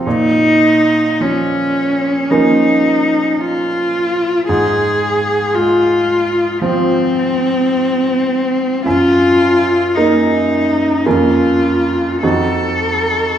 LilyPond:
<<
  \new Staff \with { instrumentName = "Cello" } { \time 4/4 \key bes \minor \tempo 4 = 55 ees'4 des'4 ees'4 f'4 | aes'4 f'4 c'2 | f'4 ees'4 f'4 a'4 | }
  \new Staff \with { instrumentName = "Grand piano" } { \time 4/4 \key bes \minor bes,4 f4 <f bes des'>2 | aes,4 aes4 <f c' f'>2 | ges,4 <bes ees'>4 <f, bes des'>4 <f, c' ees' ges'>4 | }
>>